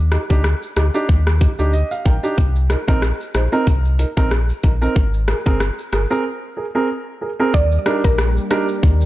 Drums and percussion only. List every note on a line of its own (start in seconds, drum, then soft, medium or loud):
0.12 cross-stick medium
0.12 closed hi-hat medium
0.12 shaker medium
0.30 kick medium
0.30 shaker medium
0.44 cross-stick loud
0.44 shaker medium
0.63 shaker soft
0.77 cross-stick medium
0.77 closed hi-hat medium
0.77 shaker medium
0.95 shaker medium
1.09 kick loud
1.09 shaker medium
1.27 cross-stick medium
1.27 shaker soft
1.41 kick medium
1.41 closed hi-hat medium
1.41 shaker medium
1.59 shaker medium
1.73 shaker medium
1.91 shaker medium
2.06 kick medium
2.06 closed hi-hat medium
2.06 shaker soft
2.24 shaker medium
2.38 kick loud
2.38 shaker medium
2.56 shaker soft
2.70 cross-stick medium
2.70 closed hi-hat medium
2.70 shaker medium
2.88 kick medium
2.88 shaker medium
3.02 cross-stick loud
3.02 shaker medium
3.21 shaker soft
3.35 cross-stick medium
3.35 closed hi-hat medium
3.35 shaker medium
3.53 shaker medium
3.67 kick medium
3.67 shaker medium
3.85 shaker soft
3.99 closed hi-hat medium
3.99 shaker medium
4.17 kick medium
4.17 shaker medium
4.31 cross-stick medium
4.31 shaker medium
4.49 shaker medium
4.63 kick medium
4.63 closed hi-hat medium
4.63 shaker soft
4.82 shaker medium
4.96 kick loud
4.96 shaker medium
5.14 shaker medium
5.28 cross-stick medium
5.28 closed hi-hat medium
5.28 shaker medium
5.46 kick medium
5.46 shaker medium
5.60 cross-stick loud
5.60 shaker medium
5.79 shaker soft
5.93 cross-stick medium
5.93 closed hi-hat medium
5.93 shaker medium
6.11 shaker medium
7.54 kick loud
7.54 shaker medium
7.72 shaker medium
7.86 cross-stick medium
7.86 closed hi-hat medium
7.86 shaker medium
8.04 kick loud
8.04 shaker medium
8.18 cross-stick loud
8.18 shaker medium
8.37 shaker soft
8.51 cross-stick medium
8.51 closed hi-hat medium
8.51 shaker medium
8.69 shaker medium
8.83 kick loud
8.83 shaker medium
9.01 shaker medium